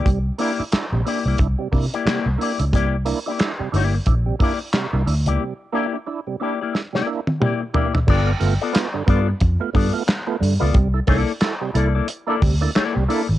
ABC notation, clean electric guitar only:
X:1
M:4/4
L:1/16
Q:"Swing 16ths" 1/4=90
K:C
V:1 name="Clean electric guitar"
z2 [_B,EGd] z3 [B,EGd] [B,EGd] z3 [B,EGd] [B,EGd] z [B,EGd] z | [_B,EGd] z2 [B,EGd] z2 [B,EGd] z3 [B,EGd] z4 [B,EGd] | z2 [_B,EGd] z3 [B,EGd] [B,EGd] z [B,EGd] z2 [B,EGd] z [B,EGd] z | [B,FAd] z2 [B,FAd] z2 [B,FAd] z3 [B,FAd] z4 [B,FAd] |
z2 [_B,EAd] z3 [B,EAd] [B,EAd] z [B,EAd] z2 [B,EAd] z [B,EAd] z |]